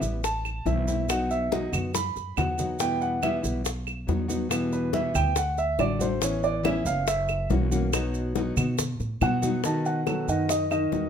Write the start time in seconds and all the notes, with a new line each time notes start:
0.02 A1 G3 B3 E4, high bongo, maracas
0.23 A5, muted nylon-string guitar stroke, high bongo, high conga, maracas
0.45 high bongo, high conga, claves, maracas
0.66 B1 E3 A3 C4 E4 E5, high bongo, low bongo, high conga, maracas
0.88 A3 C4 E4, high bongo, high conga, maracas
1.08 B2 F#3 B3 D#4 F#4 F#5, high bongo, claves, maracas
1.31 E5, high conga, maracas
1.51 B2 F#3 B3 D#4 F#4 D#5, high bongo, high conga, maracas
1.73 F#2 B3 D#4 F#4, high bongo, high conga, low conga, claves, maracas
1.94 B5, muted nylon-string guitar stroke, high bongo, high conga, maracas
2.16 F#2, high bongo, maracas
2.36 E2 F#3 B3 D#4 F#4 F#5, high bongo, low bongo, low conga, claves, maracas
2.58 F#3 B3 D#4 F#4, high bongo, low conga, maracas
2.79 B2 E3 G3 B3 E4 G5, high bongo, high conga, maracas
3.01 F#5, high conga, maracas
3.22 B2 E3 G3 B3 E4 E5, high bongo, high conga, claves, maracas
3.43 B1 G3 B3 E4, high bongo, maracas
3.64 muted nylon-string guitar stroke, high bongo, high conga, maracas
3.87 high bongo, high conga, claves, maracas
4.07 E2 F#3 B3 D#4 F#4, high bongo, low bongo, high conga, maracas
4.28 F#3 B3 D#4 F#4, high bongo, high conga, maracas
4.49 B2 E3 G3 B3 E4, high bongo, claves, maracas
4.72 B4, high conga, maracas
4.93 B2 E3 G3 B3 E4 E5, high bongo, high conga, maracas
5.14 D2 G3 B3 E4 G5, high bongo, high conga, low conga, claves, maracas
5.35 F#5, muted nylon-string guitar stroke, high bongo, high conga, maracas
5.57 E5, high bongo, high conga, maracas
5.78 A1 D3 A3 D4 F#4 D5, high bongo, low bongo, high conga, claves, maracas
5.99 A3 D4 F#4 C5, high bongo, high conga, maracas
6.20 E3 B3 C#4 E4 C#5, high bongo, maracas
6.43 D5, high conga, maracas
6.63 E3 B3 C#4 E4 E5, high bongo, high conga, claves, maracas
6.85 F#1 B3 C#4 E4 F5, high bongo, maracas
7.06 E5, muted nylon-string guitar stroke, high bongo, high conga, maracas
7.28 high bongo, high conga, claves, maracas
7.50 B1 E3 A#3 C#4 F#4, high bongo, low bongo, high conga, maracas
7.71 E3 A#3 C#4 F#4, high bongo, high conga, maracas
7.93 B2 F#3 B3 D#4 F#4, high bongo, claves, maracas
8.14 high conga, maracas
8.35 B2 F#3 B3 D#4 F#4, high bongo, high conga, maracas
8.57 B2 B3 D#4 F#4, high bongo, high conga, low conga, claves, maracas
8.78 muted nylon-string guitar stroke, high bongo, high conga, low conga, maracas
9.00 A2, high bongo, high conga, maracas
9.21 B2 F#3 B3 D#4 F#4 F#5, high bongo, low bongo, high conga, claves, maracas
9.42 F#3 B3 D#4 F#4, high bongo, high conga, maracas
9.63 B2 D#3 A3 B3 D#4 F#4 D#5 A5, high bongo, high conga, maracas
9.86 F#5, high conga, maracas
10.06 D#3 F#3 A3 B3 F#4 A4, high bongo, high conga, claves, maracas
10.28 F#2 D#3 D#4 D#5 F#5, high bongo, maracas
10.49 D#5, muted nylon-string guitar stroke, high bongo, high conga, maracas
10.71 D#3 D#4 D#5, high bongo, high conga, claves, maracas
10.91 E2 D#3 A3 B3 F#4, high bongo, low bongo, high conga, maracas